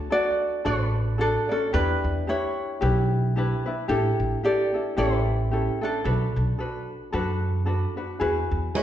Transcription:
Already playing: D4 F#4 D5
0.10 D4 F#4 A4 D5
0.65 A1 D4 F#4 A4 B4 D5
1.18 D4 F#4 A4 D5
1.49 C#4 D4 F#4 A4 D5
1.73 E2 D4 E4 G4 B4
2.04 E2
2.27 D4 E4 G4 B4 C#5
2.81 B1 D4 E4 G4 B4
3.36 D4 E4 G4 B4
3.66 D4 E4 B4
3.88 A1 D4 E4 G4 A4
4.20 A1
4.43 D4 E4 G4 A4 D5
4.74 D4 E4 A4
4.97 A1 C#4 E4 G4 A4 B4
5.51 C#4 E4 G4 A4
5.81 C#4 D4 E4 A4
6.04 B1 D4 F#4 A4 B4
6.36 B1
6.58 D4 F#4 A4 B4
7.12 F#2 D4 F#4 A4 B4
7.66 D4 F#4 A4 B4
7.97 D4 F#4 B4
8.20 E2 E4 F#4 G#4 B4
8.51 E2
8.74 G#3 E4 F#4 G#4 B4 C#5

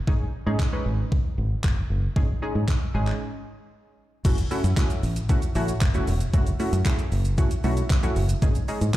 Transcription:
0.07 G#1 G#3 C#4 D#4 G#4, kick
0.46 G#2 G#3 C#4 D#4 G#4
0.59 kick, clap
0.72 G#3 C#4 D#4 B4
0.86 G#1
1.12 kick
1.38 G#1
1.64 F#1, kick, clap
1.90 F#1
2.16 G#1 G#3 C#4 D#4 G#4, kick
2.42 G#3 C#4 D#4 G#4
2.55 G#2
2.68 kick, clap
2.94 G#1 G#3 C#4 D#4 G#4
3.07 clap
4.25 F#1 A3 C#4 E4 F#4, kick, crash, shaker
4.38 closed hi-hat, shaker
4.51 A3 C#4 E4 F#4, open hi-hat, shaker
4.64 F#2, closed hi-hat, shaker
4.77 A3 C#4 E4 F#4, kick, clap, shaker
4.90 closed hi-hat, shaker
5.03 A1, open hi-hat, shaker
5.16 closed hi-hat, shaker
5.29 A3 C#4 E4 F#4, kick, shaker
5.42 closed hi-hat, shaker
5.55 A1 A3 C#4 E4 F#4, open hi-hat, shaker
5.68 closed hi-hat, shaker
5.81 F#1, kick, clap, shaker
5.94 A3 C#4 E4 F#4, closed hi-hat, shaker
6.07 E1, open hi-hat, shaker
6.21 closed hi-hat, shaker
6.33 F#1 A3 C#4 E4 F#4, kick, shaker
6.47 closed hi-hat, shaker
6.59 A3 C#4 E4 F#4, open hi-hat, shaker
6.73 F#2, closed hi-hat, shaker
6.85 A3 C#4 E4 G#4, kick, clap, shaker
6.99 closed hi-hat, shaker
7.12 F#1, open hi-hat, shaker
7.25 closed hi-hat, shaker
7.38 A3 C#4 E4 F#4, kick, shaker
7.51 closed hi-hat, shaker
7.64 B1 A3 C#4 E4 F#4, open hi-hat, shaker
7.77 closed hi-hat, shaker
7.90 A1, kick, clap, shaker
8.03 A3 C#4 E4 F#4, closed hi-hat, shaker
8.16 F#1, open hi-hat, shaker
8.29 closed hi-hat, shaker
8.42 G#1 G#3 C#4 D#4 G#4, kick, shaker
8.55 closed hi-hat, shaker
8.68 G#3 C#4 D#4 G#4, open hi-hat, shaker
8.81 G#2, closed hi-hat, shaker

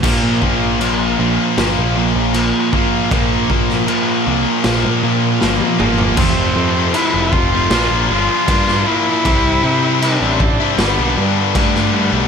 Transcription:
0.03 A#1 A#2 F3 A#3, kick, crash
0.23 A#2
0.41 A#1 A#2 F3 A#3, kick
0.80 A#2 F3 A#3, crash
1.19 A#1 A#2 F3 A#3
1.58 G1 A#2 F3 A#3, snare, crash
1.78 A#1
1.96 A#2 F3 A#3
2.15 A#1
2.34 A#2 F3 A#3, crash
2.73 A#2 F3 A#3, kick
3.11 A#2 F3 A#3, kick, crash
3.31 A#1
3.50 A#2 F3 A#3, kick
3.69 snare
3.86 A#2 F3 A#3, crash
4.25 C2 A#2 F3 A#3
4.64 A#1 A#2 F3 A#3, snare, crash
4.84 A#2
5.03 A#2 F3 A#3
5.41 G1 A#2 F3 A#3, snare
5.60 high tom
5.80 G1 A#2 F3 A#3, mid tom
5.98 floor tom
6.17 F1 F2 C3 F3 A3 C4, kick, crash
6.56 F2 C3 F3
6.74 F3 A3 C4
6.94 F2 C3 F3 A3 C4 E4, crash
7.14 F1 A3 C4
7.18 F3
7.31 F2 C3 F3 F4, muted distorted electric guitar stroke, kick
7.53 F3 A3 C4
7.71 A#1 A#2 F3 A#3, snare, crash
7.75 D4
7.90 A#1 A#3 D4
7.94 F3
8.09 G1 A#2 F3 F4
8.13 A#3 D4
8.48 G2 A#2 F3 A#3, kick, crash
8.52 D4
8.68 A#3 D4, snare
8.72 F3
8.87 A#2 F3 E4
8.91 A#3 D4
9.07 F3 A#3 D4
9.25 C2 C3 G3 C4, kick, crash
9.30 E4
9.63 C3 G3 C4
9.83 G3 C4 E4
10.02 C3 G3 C4 D4 E4, crash
10.21 A1 C4 E4
10.25 G3
10.40 C3 G3 C4, muted distorted electric guitar stroke, kick
10.60 G3 C4 E4
10.78 G1 G2 D3 G3 B3, snare, crash
10.82 B3 D4
10.99 B1 G3 B3 D4
11.16 G2 D3 G3
11.21 B3 D4
11.55 G2 D3 G3 A3, kick, crash
11.59 B3 D4
11.75 G3 B3 D4, snare
11.93 G2 D3 G3 B3
11.98 D4
12.12 B1 B3 D4
12.17 G3

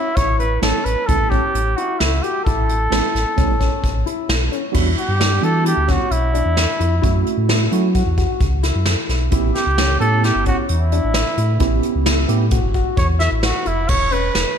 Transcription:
Already playing: E4
0.16 A1 E4 C#5, kick, closed hi-hat
0.39 B4, closed hi-hat
0.62 A1 G3 B3 C#4 E4 A4, snare, closed hi-hat
0.85 A1 B4, closed hi-hat
1.06 C#2 G3 B3 C#4 E4 A4, kick, closed hi-hat
1.20 A1
1.30 C#4 G4, kick, closed hi-hat
1.54 A1, closed hi-hat
1.77 E4 F#4, closed hi-hat
1.99 C#2 E4, snare, closed hi-hat
2.23 F#4 G4, closed hi-hat
2.45 A1 E4 A4, kick, closed hi-hat
2.69 closed hi-hat
2.90 A1 G3 B3 C#4 E4, snare, closed hi-hat
3.14 A1, snare, closed hi-hat
3.36 C#2 G3 B3 C#4 E4, kick, snare, closed hi-hat
3.49 A1
3.60 C#4, kick, snare, closed hi-hat
3.84 A1, kick, closed hi-hat
4.06 E4, closed hi-hat
4.29 B1, snare, closed hi-hat
4.52 C#4, closed hi-hat
4.72 E2 G3 B3 D4 E4 F#4, kick, crash
4.98 G4, closed hi-hat
5.08 G2
5.19 D4, snare, closed hi-hat
5.41 E3 G3 B3 D4 F#4 A4, closed hi-hat
5.65 E4 G4, closed hi-hat
5.77 D2
5.88 C#4 F#4, kick, snare, closed hi-hat
6.11 B1 E4, closed hi-hat
6.34 D4, closed hi-hat
6.45 E2
6.57 snare, closed hi-hat
6.80 F2 E4, closed hi-hat
7.02 F#2 A3 C#4 E4 F#4, kick, closed hi-hat
7.27 closed hi-hat
7.37 A2
7.49 E4, snare, closed hi-hat
7.71 F#3 A3 C#4 E4 F#4, closed hi-hat
7.95 F#4, kick, closed hi-hat
8.06 E2
8.17 F#4, kick, closed hi-hat
8.40 C#2, kick, closed hi-hat
8.63 E4, snare, closed hi-hat
8.75 F#2
8.86 snare, closed hi-hat
9.09 B1 E4, snare, closed hi-hat
9.31 A1 B3 C#4 E4 G4, kick, closed hi-hat
9.55 G4, snare, closed hi-hat
9.66 C#2
9.78 C#4, snare, closed hi-hat
10.00 A2 B3 C#4 E4 G4 A4, closed hi-hat
10.24 E4 G4, snare, closed hi-hat
10.35 G1
10.46 C#4 F#4, kick, closed hi-hat
10.69 E2 E4, closed hi-hat
10.92 D4, closed hi-hat
11.04 A1
11.14 snare, closed hi-hat
11.37 A2 E4, closed hi-hat
11.59 A1 B3 C#4 E4 G4, kick, closed hi-hat
11.83 closed hi-hat
11.95 C#2
12.06 E4, snare, closed hi-hat
12.27 A2 B3 C#4 E4 G4, closed hi-hat
12.51 F#4, kick, closed hi-hat
12.63 G1
12.74 F#4, kick, closed hi-hat
12.97 E2 C#5, kick, closed hi-hat
13.19 E4 E5, snare, closed hi-hat
13.31 A1
13.43 F#4, snare, closed hi-hat
13.65 F1 E4, closed hi-hat
13.88 E1 C#5, kick, crash
14.11 C#4 B4, closed hi-hat
14.34 E1, snare, closed hi-hat

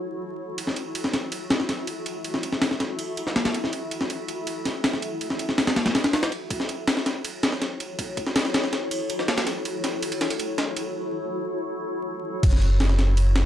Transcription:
Already playing: E4 F#4 A4 C#5
0.58 E5, ride
0.67 snare
0.76 ride
0.95 ride
1.04 snare
1.13 snare, ride
1.32 ride
1.50 snare, ride
1.60 snare
1.69 snare, ride
1.87 ride
2.06 ride
2.24 ride
2.34 snare
2.43 ride
2.52 snare
2.62 snare, ride
2.71 snare
2.80 snare, ride
2.99 ride
3.17 ride
3.27 snare
3.36 snare, ride
3.45 snare, ride
3.54 ride
3.64 snare
3.73 ride
3.91 ride
4.01 snare
4.10 ride
4.28 ride
4.47 ride
4.65 snare, ride
4.84 snare, ride
4.93 snare
5.02 ride
5.21 ride
5.30 snare
5.39 ride
5.49 snare
5.58 snare, ride
5.67 snare, ride
5.76 snare, ride
5.86 snare, ride
5.95 snare, ride
6.04 snare, ride
6.13 snare, ride
6.23 snare, ride
6.32 ride
6.50 E4 F#4 A4 C#5, kick, ride
6.60 snare
6.69 ride
6.88 snare, ride
6.97 snare
7.06 snare, ride
7.25 ride
7.43 snare, ride
7.52 snare
7.62 snare, ride
7.80 ride
7.99 kick, ride
8.17 kick, ride
8.27 snare
8.36 snare, ride
8.45 snare
8.54 snare, ride
8.64 snare
8.73 snare, ride
8.91 ride
9.10 ride
9.19 snare
9.28 snare, ride
9.38 snare, ride
9.47 snare, ride
9.65 ride
9.84 snare, ride
10.02 ride
10.12 ride
10.21 snare, ride
10.30 ride
10.40 ride
10.58 snare, ride
10.77 ride
12.43 F#1 E4 F#4 A4 C#5, kick, crash, ride
12.53 snare
12.62 ride
12.80 snare, ride
12.90 snare
12.99 snare, ride
13.17 ride
13.36 snare, ride

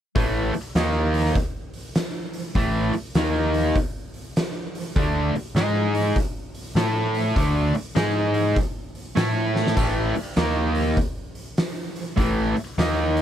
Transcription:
0.15 A1 A2 E3 A3, kick, open hi-hat
0.54 muted picked electric bass stroke, muted distorted electric guitar stroke, open hi-hat
0.75 D#2 D#3 A#3 D#4, snare, open hi-hat
1.14 open hi-hat
1.25 snare
1.35 kick, open hi-hat
1.74 open hi-hat
1.95 snare, open hi-hat
2.33 open hi-hat
2.55 A1 A2 E3 A3, kick, open hi-hat
2.93 muted picked electric bass stroke, muted distorted electric guitar stroke, open hi-hat
3.15 D#2 D#3 A#3 D#4, snare, open hi-hat
3.54 open hi-hat
3.75 kick, open hi-hat
4.14 open hi-hat
4.36 snare, open hi-hat
4.75 open hi-hat
4.96 D2 D3 A3 D4, kick, open hi-hat
5.33 muted picked electric bass stroke, muted distorted electric guitar stroke, open hi-hat
5.55 G#2 G#3 D#4 G#4, snare, open hi-hat
5.95 open hi-hat
6.16 kick, open hi-hat
6.55 open hi-hat
6.75 A2 A3 E4 A4, snare, open hi-hat
7.15 open hi-hat
7.36 D2 D3 A3 D4, kick, open hi-hat
7.74 muted picked electric bass stroke, muted distorted electric guitar stroke, open hi-hat
7.95 G#2 G#3 D#4 G#4, snare, open hi-hat
8.34 open hi-hat
8.56 kick, open hi-hat
8.95 open hi-hat
9.16 A2 A3 E4 A4, snare, open hi-hat
9.56 snare
9.67 snare
9.77 A1 A2 E3 A3, kick, open hi-hat, splash
10.15 muted distorted electric guitar stroke, muted picked electric bass stroke, open hi-hat
10.36 D#2 D#3 A#3 D#4, snare, open hi-hat
10.75 open hi-hat
10.97 kick, open hi-hat
11.35 open hi-hat
11.57 snare, open hi-hat
11.96 open hi-hat
12.17 A1 A2 E3 A3, kick, open hi-hat
12.56 muted picked electric bass stroke, muted distorted electric guitar stroke, open hi-hat
12.78 D#2 D#3 A#3 D#4, snare, open hi-hat
13.17 open hi-hat

